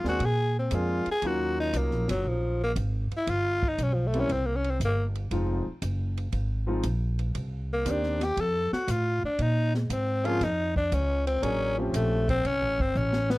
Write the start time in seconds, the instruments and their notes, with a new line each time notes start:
0.04 upright bass D#2, grand piano G#3 A#3 C4 D4 G#4, snare
0.09 tenor saxophone F#4
0.20 upright bass A#2, kick, ride
0.25 tenor saxophone G#4
0.59 tenor saxophone C4
0.71 upright bass F2, grand piano G#3 A#3 C4 D4 G#4, kick, hi-hat pedal, ride
0.75 tenor saxophone F4
1.06 muted upright bass stroke, ride
1.11 tenor saxophone G#4
1.22 upright bass D#2, grand piano F#3 A#3 C#4 D#4 F4, kick, ride
1.27 tenor saxophone F#4
1.60 tenor saxophone D#4
1.73 upright bass C2, kick, hi-hat pedal, ride
1.77 tenor saxophone A#3
1.91 upright bass A#1, snare
2.08 upright bass F#1, tenor saxophone F#3, snare, ride
2.24 upright bass A#1, tenor saxophone F3, kick
2.63 tenor saxophone A#3
2.76 upright bass G#1, kick, hi-hat pedal, ride
3.11 muted upright bass stroke, ride
3.17 tenor saxophone E4
3.27 upright bass G1, tenor saxophone F4, kick, ride
3.63 kick
3.68 tenor saxophone D#4
3.78 upright bass B1, kick, hi-hat pedal, ride
3.83 tenor saxophone C#4
3.94 tenor saxophone F3
4.07 tenor saxophone A3
4.14 grand piano G3 A#3 C4 C#4 E4, ride
4.20 tenor saxophone C#4
4.29 upright bass C2, tenor saxophone C4, kick, ride
4.46 tenor saxophone A#3
4.56 tenor saxophone C#4
4.64 ride
4.71 tenor saxophone C4
4.80 upright bass G1, kick, hi-hat pedal, ride
4.85 tenor saxophone A#3
5.15 ride
5.31 upright bass F1, grand piano F3 G#3 C4 D#4 F4, kick, ride
5.67 muted upright bass stroke
5.82 upright bass F#1, kick, hi-hat pedal, ride
6.17 ride
6.32 upright bass G#1, kick, ride
6.67 grand piano F3 G#3 C4 D#4 F4
6.83 upright bass A#1, kick, hi-hat pedal, ride
7.19 ride
7.35 upright bass C2, kick, ride
7.73 tenor saxophone A#3
7.85 upright bass D#2, grand piano D#3 A#3 C4 D4 G4, kick, hi-hat pedal, ride
7.91 tenor saxophone D4
8.03 snare
8.20 tenor saxophone G4, snare, ride
8.37 upright bass F2, kick, ride
8.41 tenor saxophone A4
8.72 tenor saxophone F#4, muted upright bass stroke, snare
8.87 upright bass A2, tenor saxophone F4, kick, hi-hat pedal, ride
9.23 tenor saxophone D4, muted upright bass stroke
9.39 upright bass A#2, tenor saxophone D#4, kick, ride
9.74 tenor saxophone G#3, snare
9.90 upright bass G#2, tenor saxophone C4, kick, hi-hat pedal, ride
10.25 grand piano F3 A#3 C4 C#4 G#4, tenor saxophone F4, ride
10.41 upright bass F2, tenor saxophone D#4, kick, snare, ride
10.76 tenor saxophone D4, kick
10.92 upright bass C#2, tenor saxophone C#4, kick, hi-hat pedal, ride
11.27 tenor saxophone C4, ride
11.42 upright bass A1, grand piano F#3 A#3 C#4 D4 G#4, tenor saxophone C#4, kick, ride
11.78 grand piano F3 A3 C4 C#4 G4, tenor saxophone F3
11.93 upright bass A#1, tenor saxophone A3, kick, hi-hat pedal, ride
12.29 tenor saxophone C4, kick, ride
12.45 upright bass C2, tenor saxophone C#4, kick, ride
12.61 upright bass A1
12.78 upright bass G1, tenor saxophone C4, kick
12.95 upright bass A1, tenor saxophone C#4, hi-hat pedal
13.13 snare
13.30 tenor saxophone B3, snare